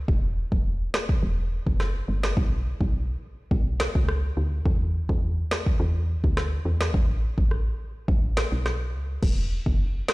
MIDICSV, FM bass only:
0, 0, Header, 1, 2, 480
1, 0, Start_track
1, 0, Tempo, 571429
1, 70, Time_signature, 4, 2, 24, 8
1, 8513, End_track
2, 0, Start_track
2, 0, Title_t, "FM bass"
2, 0, Program_c, 0, 39
2, 69, Note_on_c, 0, 28, 106
2, 383, Note_off_c, 0, 28, 0
2, 437, Note_on_c, 0, 28, 90
2, 738, Note_off_c, 0, 28, 0
2, 1030, Note_on_c, 0, 28, 100
2, 1343, Note_off_c, 0, 28, 0
2, 1398, Note_on_c, 0, 30, 87
2, 1699, Note_off_c, 0, 30, 0
2, 1749, Note_on_c, 0, 31, 95
2, 1954, Note_off_c, 0, 31, 0
2, 1990, Note_on_c, 0, 35, 107
2, 2303, Note_off_c, 0, 35, 0
2, 2357, Note_on_c, 0, 35, 98
2, 2658, Note_off_c, 0, 35, 0
2, 2949, Note_on_c, 0, 35, 101
2, 3263, Note_off_c, 0, 35, 0
2, 3320, Note_on_c, 0, 37, 88
2, 3620, Note_off_c, 0, 37, 0
2, 3671, Note_on_c, 0, 38, 97
2, 3875, Note_off_c, 0, 38, 0
2, 3910, Note_on_c, 0, 40, 98
2, 4223, Note_off_c, 0, 40, 0
2, 4277, Note_on_c, 0, 40, 103
2, 4578, Note_off_c, 0, 40, 0
2, 4869, Note_on_c, 0, 40, 105
2, 5183, Note_off_c, 0, 40, 0
2, 5240, Note_on_c, 0, 38, 94
2, 5540, Note_off_c, 0, 38, 0
2, 5589, Note_on_c, 0, 40, 92
2, 5794, Note_off_c, 0, 40, 0
2, 5831, Note_on_c, 0, 33, 108
2, 6144, Note_off_c, 0, 33, 0
2, 6197, Note_on_c, 0, 33, 85
2, 6498, Note_off_c, 0, 33, 0
2, 6789, Note_on_c, 0, 33, 109
2, 7103, Note_off_c, 0, 33, 0
2, 7157, Note_on_c, 0, 35, 94
2, 7508, Note_on_c, 0, 37, 81
2, 7520, Note_off_c, 0, 35, 0
2, 7713, Note_off_c, 0, 37, 0
2, 7750, Note_on_c, 0, 28, 104
2, 8063, Note_off_c, 0, 28, 0
2, 8116, Note_on_c, 0, 30, 89
2, 8418, Note_off_c, 0, 30, 0
2, 8513, End_track
0, 0, End_of_file